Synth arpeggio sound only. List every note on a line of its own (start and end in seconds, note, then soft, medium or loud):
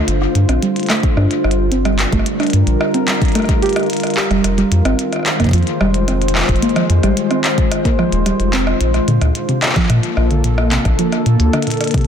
0.49 0.54 C4 medium
0.62 0.67 G3 medium
0.90 0.95 A3 loud
1.17 1.25 D4 medium
1.72 1.76 C4 medium
1.85 1.90 G3 medium
2.12 2.17 A3 loud
2.40 2.48 D4 medium
2.94 2.99 C4 medium
3.08 3.13 G3 medium
3.35 3.40 A3 loud
3.62 3.71 G4 loud
4.17 4.22 G4 medium
4.31 4.43 G3 medium
4.58 4.63 G3 loud
4.85 4.93 C4 medium
5.40 5.45 A#3 medium
5.53 5.58 F3 medium
5.81 5.86 G3 loud
6.08 6.16 C4 medium
6.62 6.67 A#3 medium
6.76 6.81 F3 medium
7.03 7.08 G3 loud
7.31 7.39 C4 medium
7.85 7.90 A#3 medium
7.99 8.04 F3 medium
8.26 8.31 G3 loud
8.53 8.62 C4 medium
9.08 9.13 D3 medium
9.22 9.26 A#2 medium
9.49 9.54 C3 loud
9.76 9.84 F3 medium
10.31 10.36 D3 medium
10.44 10.49 A#2 medium
10.71 10.76 C3 loud
10.99 11.07 F3 medium
11.53 11.58 D3 medium
11.67 11.72 A#2 medium
11.94 11.99 C3 loud